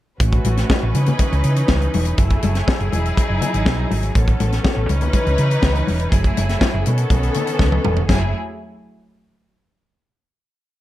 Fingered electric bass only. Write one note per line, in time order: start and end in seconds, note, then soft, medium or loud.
0.20 0.38 A1 loud
0.45 0.62 A1 medium
0.83 0.91 A1 loud
0.95 1.12 C#3 medium
1.32 1.41 C#2 medium
1.45 1.62 C#3 medium
1.69 1.87 C#2 medium
1.94 2.11 E1 loud
2.18 2.36 F#1 loud
2.43 2.60 F#1 medium
2.80 2.89 F#1 medium
2.93 3.10 E1 medium
3.30 3.38 F#1 medium
3.54 3.63 G#1 medium
3.66 3.84 B1 loud
3.91 4.09 G#1 medium
4.16 4.33 A1 loud
4.40 4.58 A1 medium
4.77 4.85 A1 medium
4.89 5.07 C#2 medium
5.27 5.35 C#2 medium
5.39 5.56 C#3 medium
5.63 5.81 C#2 loud
5.89 6.06 E1 medium
6.12 6.30 F#1 loud
6.37 6.55 F#1 medium
6.74 6.83 F#1 loud
6.87 7.04 B2 medium
7.10 7.28 B1 medium
7.59 7.77 C#2 medium
7.85 8.02 E1 medium
8.09 8.32 F#1 loud